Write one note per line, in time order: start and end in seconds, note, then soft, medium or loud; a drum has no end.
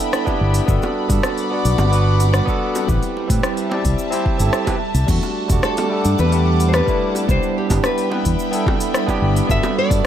0.00 0.65 G3 medium
0.00 0.23 B3 medium
0.00 0.24 D4 medium
0.00 0.24 E4 medium
0.00 0.25 A4 loud
0.00 0.66 E5 medium
0.00 0.66 G5 medium
0.00 0.66 B5 medium
0.13 cross-stick medium
0.13 shaker soft
0.25 0.64 B3 loud
0.25 0.65 D4 medium
0.25 0.65 E4 medium
0.25 kick medium
0.25 high bongo soft
0.25 shaker soft
0.29 0.66 G4 loud
0.41 0.59 G1 medium
0.54 open hi-hat medium
0.54 shaker medium
0.66 0.77 G1 loud
0.66 5.05 G3 medium
0.66 1.05 B3 medium
0.66 1.06 D4 medium
0.66 1.07 F#4 medium
0.66 2.87 F#5 medium
0.66 2.87 B5 medium
0.66 2.86 D6 medium
0.66 kick loud
0.66 shaker medium
0.70 1.07 A4 loud
0.82 high bongo medium
0.82 shaker soft
1.08 1.19 G2 medium
1.08 1.47 B3 medium
1.08 1.48 D4 medium
1.08 1.48 F#4 medium
1.08 kick loud
1.08 open hi-hat medium
1.08 shaker medium
1.12 1.49 A4 medium
1.23 cross-stick loud
1.23 high bongo medium
1.23 shaker medium
1.38 open hi-hat soft
1.38 shaker soft
1.50 1.88 B3 medium
1.50 1.89 D4 medium
1.50 1.90 F#4 medium
1.54 1.90 D5 medium
1.65 1.74 B1 medium
1.65 open hi-hat medium
1.65 shaker medium
1.78 2.40 G1 loud
1.78 high bongo medium
1.78 shaker medium
1.91 2.43 B3 medium
1.91 2.44 D4 medium
1.91 2.45 F#4 medium
1.91 open hi-hat soft
1.91 shaker soft
1.95 2.46 B4 loud
2.20 open hi-hat medium
2.20 high bongo medium
2.20 shaker medium
2.34 cross-stick loud
2.34 shaker medium
2.46 2.84 B3 loud
2.46 2.85 D4 medium
2.46 2.86 F#4 medium
2.46 kick medium
2.46 shaker soft
2.50 2.87 A4 loud
2.75 open hi-hat medium
2.75 high bongo medium
2.75 shaker medium
2.87 2.98 A1 medium
2.87 3.26 C4 medium
2.87 3.26 E4 medium
2.87 3.27 G4 medium
2.87 5.07 E5 medium
2.87 7.25 A5 medium
2.87 kick loud
2.87 shaker medium
2.91 3.28 B4 medium
3.03 open hi-hat soft
3.03 shaker soft
3.17 high bongo soft
3.28 3.39 A2 medium
3.28 3.67 C4 medium
3.28 3.67 E4 medium
3.28 3.68 G4 medium
3.28 kick loud
3.28 open hi-hat medium
3.28 shaker medium
3.32 3.69 B4 medium
3.43 cross-stick loud
3.43 shaker medium
3.57 open hi-hat soft
3.57 shaker soft
3.69 4.08 C4 medium
3.69 4.09 E4 medium
3.69 4.10 G4 medium
3.69 high bongo medium
3.73 4.10 D5 medium
3.85 3.94 C2 medium
3.85 kick medium
3.85 open hi-hat medium
3.85 shaker medium
3.98 shaker medium
4.10 4.36 C4 medium
4.10 4.37 E4 medium
4.10 4.38 G4 medium
4.10 open hi-hat soft
4.10 high bongo medium
4.10 shaker soft
4.14 4.38 C5 loud
4.26 kick loud
4.38 4.49 G1 medium
4.38 4.63 C4 medium
4.38 4.64 E4 medium
4.38 4.64 G4 medium
4.38 4.65 A4 medium
4.38 open hi-hat medium
4.38 shaker medium
4.53 cross-stick loud
4.53 shaker soft
4.65 4.75 C4 medium
4.65 4.76 E4 medium
4.65 4.77 G4 medium
4.65 4.77 B4 loud
4.65 kick medium
4.65 open hi-hat soft
4.65 high bongo medium
4.65 shaker soft
4.94 5.04 C2 medium
4.94 open hi-hat medium
4.94 shaker medium
5.06 5.18 E2 loud
5.06 5.46 G3 medium
5.06 10.06 G3 medium
5.06 5.46 A3 medium
5.06 5.47 D4 medium
5.06 5.48 F#4 loud
5.06 7.27 F#5 medium
5.06 7.27 D6 medium
5.06 kick loud
5.06 crash medium
5.06 shaker medium
5.22 high bongo soft
5.22 shaker soft
5.48 5.59 E1 medium
5.48 5.87 G3 medium
5.48 5.88 A3 medium
5.48 5.88 D4 medium
5.48 kick loud
5.48 open hi-hat medium
5.48 shaker medium
5.52 5.89 F#4 medium
5.63 6.19 A4 medium
5.63 cross-stick loud
5.63 shaker medium
5.77 open hi-hat soft
5.77 high bongo medium
5.77 shaker soft
5.89 6.28 G3 medium
5.89 6.29 A3 medium
5.89 6.30 D4 medium
5.93 6.30 A4 medium
6.05 6.14 G2 medium
6.05 open hi-hat medium
6.05 shaker medium
6.18 6.80 E2 loud
6.18 6.68 B4 medium
6.18 high bongo medium
6.18 shaker medium
6.30 6.83 G3 medium
6.30 6.84 A3 medium
6.30 6.85 D4 medium
6.30 6.85 G4 loud
6.30 open hi-hat soft
6.30 shaker soft
6.60 open hi-hat medium
6.60 shaker medium
6.69 6.75 C5 medium
6.73 7.30 B4 loud
6.73 cross-stick loud
6.73 high bongo medium
6.73 shaker medium
6.86 7.25 G3 loud
6.86 7.25 A3 medium
6.86 7.26 D4 medium
6.86 7.27 E4 loud
6.86 kick loud
6.86 shaker soft
7.15 open hi-hat medium
7.15 high bongo medium
7.15 shaker medium
7.27 7.38 C2 loud
7.27 7.66 B3 medium
7.27 7.67 D4 medium
7.27 7.67 E4 medium
7.27 7.56 C5 loud
7.27 9.47 E5 medium
7.27 9.47 G5 medium
7.27 10.06 B5 medium
7.27 kick loud
7.27 shaker medium
7.31 7.68 G4 medium
7.43 shaker soft
7.58 7.86 G4 medium
7.68 7.79 G1 medium
7.68 8.07 B3 medium
7.68 8.08 D4 medium
7.68 8.09 E4 medium
7.68 kick loud
7.68 open hi-hat medium
7.68 high bongo medium
7.68 shaker medium
7.72 8.09 G4 medium
7.84 9.18 B4 medium
7.84 cross-stick loud
7.84 shaker medium
7.98 open hi-hat soft
7.98 shaker soft
8.10 8.49 B3 medium
8.10 8.50 D4 medium
8.10 8.50 E4 medium
8.10 high bongo medium
8.14 8.51 B4 medium
8.25 8.34 E2 medium
8.25 kick medium
8.25 open hi-hat medium
8.25 shaker medium
8.39 shaker medium
8.51 9.04 B3 medium
8.51 9.04 D4 medium
8.51 9.05 E4 medium
8.51 9.06 A4 loud
8.51 open hi-hat soft
8.51 shaker soft
8.67 kick loud
8.67 high bongo medium
8.80 open hi-hat medium
8.80 shaker medium
8.94 cross-stick loud
8.94 shaker medium
9.06 9.45 B3 loud
9.06 9.46 D4 loud
9.06 9.46 E4 medium
9.06 kick medium
9.06 high bongo medium
9.06 shaker soft
9.10 9.47 G4 loud
9.22 9.40 G1 medium
9.36 open hi-hat medium
9.36 shaker medium
9.47 9.58 G1 medium
9.47 9.86 B3 medium
9.47 9.87 D4 medium
9.47 9.88 F#4 medium
9.47 9.88 A4 loud
9.47 9.76 E5 loud
9.47 10.06 F#5 medium
9.47 10.06 D6 loud
9.47 kick loud
9.47 shaker medium
9.63 high bongo medium
9.63 shaker soft
9.78 10.06 D5 loud
9.88 10.00 G2 medium
9.88 10.06 B3 medium
9.88 10.06 D4 medium
9.88 10.06 F#4 medium
9.88 10.06 A4 medium
9.88 kick loud
9.88 open hi-hat medium
9.88 shaker medium